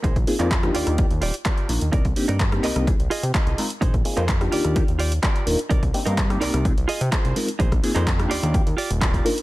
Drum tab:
HH |xxoxxxoxxxoxxxox|xxoxxxoxxxoxxxox|xxoxxxoxxxoxxxox|xxoxxxoxxxoxxxox|
CP |---xx-------x---|----x-x-----x---|---xx-------x---|----x-x-----x---|
SD |-----r-r--------|-----r-r--------|-----r-r--------|-----r-r--------|
BD |oo--o---o---o---|oo--o---o---o---|oo--o---o---o---|oo--o---o---o---|

HH |xxoxxxoxxxoxxxox|
CP |---xx-------x---|
SD |-r---r-r--------|
BD |oo--o---o---oo--|